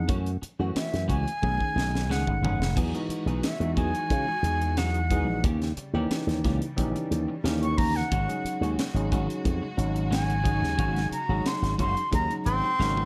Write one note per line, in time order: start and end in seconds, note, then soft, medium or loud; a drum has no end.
0.08 0.37 F#2 medium
0.08 0.29 E3 medium
0.08 0.29 A3 medium
0.08 0.29 C#4 medium
0.08 0.30 F#4 medium
0.08 kick loud
0.08 closed hi-hat medium
0.26 closed hi-hat soft
0.42 muted clean electric guitar stroke soft
0.42 muted slap bass stroke soft
0.42 closed hi-hat medium
0.59 0.73 F#2 medium
0.59 1.30 E3 medium
0.59 1.30 A3 medium
0.59 0.80 A3 soft
0.59 0.79 C#4 soft
0.59 1.31 C#4 medium
0.59 0.79 F#4 medium
0.59 1.31 F#4 medium
0.76 1.07 E5 medium
0.76 muted slap bass stroke soft
0.76 snare loud
0.76 closed hi-hat medium
0.92 1.07 F#2 medium
0.92 muted clean electric guitar stroke soft
0.92 snare soft
0.92 closed hi-hat soft
1.08 1.24 C#2 medium
1.08 1.26 E3 medium
1.08 1.26 A3 medium
1.08 1.26 C#4 medium
1.08 1.25 F#4 medium
1.08 2.13 G#5 loud
1.08 kick medium
1.08 closed hi-hat medium
1.27 muted clean electric guitar stroke soft
1.27 closed hi-hat soft
1.42 1.58 B1 medium
1.42 1.99 D#3 medium
1.42 1.99 A3 medium
1.42 2.00 C#4 medium
1.42 2.00 G#4 medium
1.42 muted clean electric guitar stroke soft
1.42 kick medium
1.42 high tom medium
1.60 muted clean electric guitar stroke soft
1.60 kick medium
1.75 2.08 B1 medium
1.75 muted clean electric guitar stroke soft
1.75 snare medium
1.93 muted clean electric guitar stroke soft
1.93 snare medium
2.08 2.23 C#2 medium
2.08 2.30 D#3 medium
2.08 2.77 D#3 medium
2.08 2.30 A3 medium
2.08 2.77 A3 medium
2.08 2.30 C#4 medium
2.08 2.77 C#4 medium
2.08 2.31 G#4 medium
2.08 2.77 G#4 medium
2.08 2.77 F#5 medium
2.08 snare medium
2.27 2.41 G#1 medium
2.27 kick medium
2.42 2.58 F#1 medium
2.42 2.60 D#3 medium
2.42 2.60 A3 medium
2.42 2.59 C#4 medium
2.42 2.59 G#4 medium
2.42 floor tom loud
2.59 2.74 F1 medium
2.59 muted clean electric guitar stroke soft
2.59 snare medium
2.76 2.91 E2 medium
2.76 2.97 F#3 medium
2.76 5.41 G#3 medium
2.76 2.97 B3 medium
2.76 2.97 D#4 medium
2.76 5.41 F#4 medium
2.76 2.97 G#4 medium
2.76 kick medium
2.76 closed hi-hat medium
2.76 crash medium
2.94 3.50 E3 medium
2.94 3.50 G#3 medium
2.94 3.50 D#4 medium
2.94 3.51 F#4 medium
2.94 closed hi-hat soft
3.09 muted slap bass stroke soft
3.09 muted clean electric guitar stroke soft
3.09 closed hi-hat medium
3.26 3.40 B1 medium
3.26 3.47 B3 soft
3.26 3.47 D#4 soft
3.26 3.47 G#4 medium
3.26 closed hi-hat soft
3.43 3.75 E5 medium
3.43 snare loud
3.43 closed hi-hat medium
3.60 3.74 E2 medium
3.60 4.31 E3 medium
3.60 4.31 G#3 medium
3.60 4.31 D#4 medium
3.60 4.32 F#4 medium
3.60 muted clean electric guitar stroke soft
3.60 closed hi-hat soft
3.77 3.91 E2 medium
3.77 3.94 F#3 medium
3.77 3.94 B3 medium
3.77 3.94 D#4 medium
3.77 3.94 G#4 medium
3.77 4.79 G#5 loud
3.77 kick medium
3.77 closed hi-hat medium
3.95 muted clean electric guitar stroke soft
3.95 closed hi-hat soft
4.10 4.25 C#3 medium
4.10 muted clean electric guitar stroke soft
4.10 kick medium
4.10 closed hi-hat medium
4.28 muted clean electric guitar stroke soft
4.43 5.27 E2 medium
4.43 5.01 E3 medium
4.43 5.01 G#3 medium
4.43 5.01 D#4 medium
4.43 5.01 G#4 medium
4.43 muted clean electric guitar stroke soft
4.43 closed hi-hat medium
4.61 muted clean electric guitar stroke soft
4.61 closed hi-hat soft
4.77 4.98 F#3 medium
4.77 4.98 B3 medium
4.77 4.98 D#4 medium
4.77 4.98 G#4 medium
4.77 5.44 F#5 medium
4.77 snare loud
4.77 closed hi-hat medium
4.94 closed hi-hat soft
5.10 5.44 E3 medium
5.10 5.28 F#3 medium
5.10 5.44 G#3 medium
5.10 5.27 B3 medium
5.10 5.44 D#4 medium
5.10 5.27 D#4 medium
5.10 5.44 G#4 medium
5.10 5.27 G#4 medium
5.10 kick medium
5.10 closed hi-hat medium
5.27 5.41 A#1 medium
5.27 muted clean electric guitar stroke soft
5.43 5.72 D#2 medium
5.43 8.09 C#3 medium
5.43 5.65 E3 medium
5.43 8.09 G3 medium
5.43 5.65 A#3 medium
5.43 5.65 C#4 medium
5.43 5.65 G4 medium
5.43 kick loud
5.43 closed hi-hat medium
5.62 snare soft
5.62 closed hi-hat soft
5.77 muted slap bass stroke soft
5.77 muted clean electric guitar stroke soft
5.77 closed hi-hat medium
5.93 6.07 D#2 loud
5.93 6.65 E3 medium
5.93 6.15 A#3 soft
5.93 6.65 C#4 medium
5.93 6.14 C#4 medium
5.93 6.65 D#4 medium
5.93 6.14 G4 medium
5.93 6.65 G4 loud
6.10 muted slap bass stroke soft
6.10 snare loud
6.10 closed hi-hat medium
6.27 6.41 D#2 medium
6.27 muted clean electric guitar stroke soft
6.27 snare soft
6.27 closed hi-hat soft
6.44 6.59 C#2 medium
6.44 6.61 E3 medium
6.44 6.61 A#3 medium
6.44 6.61 C#4 medium
6.44 6.61 G4 medium
6.44 kick medium
6.44 snare soft
6.44 closed hi-hat medium
6.62 muted clean electric guitar stroke soft
6.62 closed hi-hat soft
6.77 6.92 A#1 medium
6.77 7.34 E3 medium
6.77 7.34 C#4 medium
6.77 7.34 D#4 medium
6.77 7.34 G4 loud
6.77 muted clean electric guitar stroke soft
6.77 kick medium
6.77 closed hi-hat medium
6.96 muted clean electric guitar stroke soft
6.96 closed hi-hat soft
7.11 7.26 D#2 medium
7.11 muted clean electric guitar stroke soft
7.11 closed hi-hat medium
7.28 muted clean electric guitar stroke medium
7.44 8.01 D#2 medium
7.44 8.11 E3 medium
7.44 7.65 E3 medium
7.44 7.65 A#3 medium
7.44 8.11 C#4 medium
7.44 7.65 C#4 medium
7.44 8.11 D#4 medium
7.44 7.65 G4 medium
7.44 8.11 A#4 medium
7.44 snare loud
7.44 closed hi-hat medium
7.63 7.79 C#6 medium
7.63 closed hi-hat soft
7.78 7.95 E3 medium
7.78 7.95 A#3 medium
7.78 7.95 C#4 medium
7.78 7.94 G4 medium
7.78 7.98 A#5 loud
7.78 kick medium
7.78 open hi-hat medium
7.96 8.62 F#5 medium
7.96 muted clean electric guitar stroke soft
7.96 snare soft
7.96 closed hi-hat soft
8.11 8.26 G#1 medium
8.11 13.05 C#3 medium
8.11 8.32 D#3 medium
8.11 13.05 G#3 medium
8.11 8.32 G#3 medium
8.11 8.32 C#4 medium
8.11 13.05 F#4 medium
8.11 8.32 F#4 medium
8.11 kick loud
8.11 closed hi-hat medium
8.28 8.84 F#3 medium
8.28 8.84 C#4 medium
8.28 8.84 D#4 medium
8.28 8.85 G#4 medium
8.28 closed hi-hat soft
8.44 muted slap bass stroke soft
8.44 muted clean electric guitar stroke soft
8.44 closed hi-hat medium
8.61 8.75 D#2 medium
8.61 8.82 G#3 soft
8.61 8.82 C#4 medium
8.61 8.81 F#4 medium
8.61 closed hi-hat soft
8.77 muted slap bass stroke soft
8.77 snare loud
8.77 closed hi-hat medium
8.94 9.08 G#1 medium
8.94 9.65 F#3 medium
8.94 9.66 C#4 medium
8.94 9.66 D#4 medium
8.94 9.66 G#4 medium
8.94 muted clean electric guitar stroke medium
8.94 closed hi-hat soft
9.12 9.26 G#1 medium
9.12 9.29 D#3 loud
9.12 9.29 G#3 medium
9.12 9.28 C#4 loud
9.12 9.28 F#4 loud
9.12 kick medium
9.12 closed hi-hat medium
9.29 muted clean electric guitar stroke soft
9.29 closed hi-hat soft
9.45 9.60 F2 medium
9.45 muted clean electric guitar stroke soft
9.45 kick medium
9.45 closed hi-hat medium
9.62 muted clean electric guitar stroke soft
9.77 10.63 G#1 medium
9.77 10.34 F#3 medium
9.77 10.35 C#4 medium
9.77 10.35 D#4 medium
9.77 10.35 F#4 medium
9.77 muted clean electric guitar stroke soft
9.77 closed hi-hat medium
9.95 muted clean electric guitar stroke soft
9.95 closed hi-hat soft
10.10 10.32 D#3 medium
10.10 10.32 G#3 medium
10.10 10.32 C#4 medium
10.10 10.32 F#4 medium
10.10 11.08 G#5 medium
10.10 snare loud
10.10 closed hi-hat medium
10.30 closed hi-hat soft
10.43 10.61 D#3 medium
10.43 11.15 F#3 medium
10.43 10.61 G#3 medium
10.43 11.15 C#4 medium
10.43 10.60 C#4 medium
10.43 11.15 D#4 medium
10.43 10.60 F#4 medium
10.43 11.16 G#4 medium
10.43 kick medium
10.43 closed hi-hat medium
10.61 10.75 D#2 medium
10.61 muted clean electric guitar stroke soft
10.61 snare soft
10.78 11.07 G#1 loud
10.78 10.99 D#3 medium
10.78 10.99 G#3 medium
10.78 10.99 C#4 medium
10.78 10.99 F#4 medium
10.78 kick loud
10.78 closed hi-hat medium
10.96 snare soft
10.96 closed hi-hat soft
11.11 11.48 A#5 medium
11.11 muted slap bass stroke soft
11.11 muted clean electric guitar stroke soft
11.11 closed hi-hat medium
11.29 11.42 G#1 loud
11.29 12.00 F#3 medium
11.29 11.49 G#3 soft
11.29 12.00 C#4 medium
11.29 11.49 C#4 soft
11.29 12.00 D#4 medium
11.29 11.49 F#4 medium
11.29 12.00 G#4 medium
11.46 11.79 C6 medium
11.46 snare loud
11.46 closed hi-hat medium
11.62 11.76 G#1 medium
11.62 muted clean electric guitar stroke soft
11.62 snare soft
11.62 closed hi-hat soft
11.78 11.93 F#1 loud
11.78 11.96 D#3 medium
11.78 11.96 G#3 medium
11.78 11.95 C#4 medium
11.78 11.95 F#4 medium
11.78 12.10 C6 medium
11.78 kick medium
11.78 closed hi-hat medium
11.97 closed hi-hat soft
12.11 12.27 D#2 medium
12.11 12.69 F#3 medium
12.11 12.69 C#4 medium
12.11 12.69 D#4 medium
12.11 12.69 G#4 medium
12.11 12.34 A#5 loud
12.11 muted clean electric guitar stroke soft
12.11 kick medium
12.11 closed hi-hat medium
12.30 muted clean electric guitar stroke soft
12.30 closed hi-hat soft
12.45 12.60 G#1 medium
12.45 13.05 C4 medium
12.45 13.05 C6 loud
12.45 muted clean electric guitar stroke soft
12.45 closed hi-hat medium
12.64 muted clean electric guitar stroke medium
12.79 13.05 G#1 medium
12.79 13.05 C#3 medium
12.79 13.00 D#3 medium
12.79 13.05 F#3 medium
12.79 13.00 G#3 medium
12.79 13.00 C#4 loud
12.79 13.05 D#4 medium
12.79 13.00 F#4 loud
12.79 13.05 A#4 loud
12.79 snare medium
12.97 high tom medium